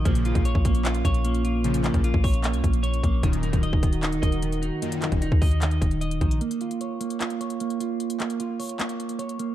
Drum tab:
HH |xxxxx-xxxxxxxxx-|xxxxx-oxxxxxxxx-|xxxxx-xxxxxxxxx-|xxxxx-oxxxxxxxxx|
CP |--------x-------|--x-----x-------|--------x-------|--x-----x-------|
BD |o--o-oo---o-----|---o-oo---o---o-|o--o-oo---o-----|---o-oo---o---o-|

HH |xxxxx-xxxxxxxxx-|xxxxx-oxxxxxxxx-|
CP |--------x-------|--x-----x-------|
BD |----------------|----------------|